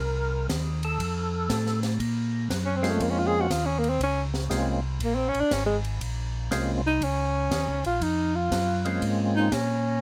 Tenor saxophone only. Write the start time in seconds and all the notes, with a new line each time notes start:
2.65 C#4
2.76 C4
2.90 A3
3.03 A#3
3.10 C#4
3.19 F4
3.27 G#4
3.41 F#4
3.52 F4
3.66 C#4
3.79 A#3
3.90 C4
4.03 C#4
5.04 A#3
5.15 C4
5.28 C#4
5.40 D4
5.53 C#4
5.66 G#3
6.87 D#4
7.04 C#4
7.86 F4
8.02 D#4
8.35 F4
9.36 D#4
9.53 C#4